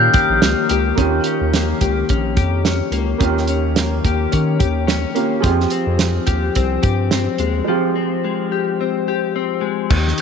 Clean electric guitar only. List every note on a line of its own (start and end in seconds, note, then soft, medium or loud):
0.00 0.98 D#3 medium
0.00 0.42 A#3 medium
0.00 1.26 C#4 medium
0.00 0.13 G4 medium
0.14 0.70 G4 medium
0.42 1.54 A#3 medium
0.71 1.29 G4 medium
0.98 3.18 D#3 medium
1.26 2.09 C#4 soft
1.55 2.91 A#3 medium
1.81 2.36 G4 medium
2.10 2.64 C#4 medium
2.37 4.05 G4 medium
2.65 3.48 C#4 medium
2.92 3.76 A#3 medium
3.19 5.42 D#3 medium
3.49 4.31 C#4 medium
3.79 5.14 A#3 medium
4.05 4.59 G4 medium
4.32 4.86 C#4 medium
4.60 6.26 G4 medium
4.87 5.50 C#4 medium
5.15 5.50 A#3 medium
5.42 7.66 F3 medium
5.71 6.55 C4 medium
6.27 6.82 G4 medium
6.56 7.11 C4 medium
6.83 8.52 G4 medium
7.12 7.94 C4 medium
7.40 8.23 G#3 medium
7.68 9.90 F3 medium
7.96 8.79 C4 medium
8.24 9.60 G#3 medium
8.52 9.08 G4 medium
8.81 9.34 C4 medium
9.08 10.21 G4 medium
9.36 9.97 C4 medium
9.61 9.96 G#3 medium
9.90 10.21 D#3 medium